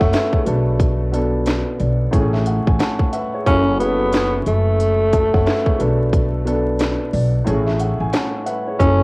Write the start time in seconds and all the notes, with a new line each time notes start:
Already playing: F#3 A3 C#4 E4 G#4 A4 E5 A5
0.00 F#1 C#5 F#5, kick, snare
0.13 B4 E5, snare, closed hi-hat
0.33 G#4 C#5, kick
0.45 B1 B2 B3 D4 A4, closed hi-hat
0.80 kick, closed hi-hat
1.12 B2 B3 D4 A4, closed hi-hat
1.46 snare, closed hi-hat
1.80 B1 D5, closed hi-hat
2.11 A1 A2 A3 C#4 G#4 C#5, kick, closed hi-hat
2.33 E5, snare
2.46 F#5, closed hi-hat
2.67 A1 G#5, kick
2.80 C#5 F#5 A5, snare, closed hi-hat
2.99 kick
3.13 B4 E5 F#5, closed hi-hat
3.34 G#4 C#5
3.46 F#1 F#3 C#4 E4 A4, kick, closed hi-hat
3.79 F#3 B3 C#4 E4 G#4, closed hi-hat
3.88 A4
4.13 snare, closed hi-hat
4.46 F#1 A3, closed hi-hat
4.80 closed hi-hat
5.13 E5 A5, kick, closed hi-hat
5.33 F#1 C#5 F#5, kick, snare
5.46 B4 E5, snare, closed hi-hat
5.66 G#4 C#5, kick
5.78 B1 B2 B3 D4 A4, closed hi-hat
6.13 kick, closed hi-hat
6.45 B2 B3 D4 A4, closed hi-hat
6.79 snare, closed hi-hat
7.13 B1 D5, open hi-hat
7.44 A1 A2 A3 C#4 G#4 C#5, closed hi-hat
7.66 E5, snare
7.80 F#5, closed hi-hat
8.00 A1 G#5
8.13 C#5 F#5 A5, snare, closed hi-hat
8.46 B4 E5 F#5, closed hi-hat
8.67 G#4 C#5
8.79 F#1 F#3 C#4 E4 A4, kick, closed hi-hat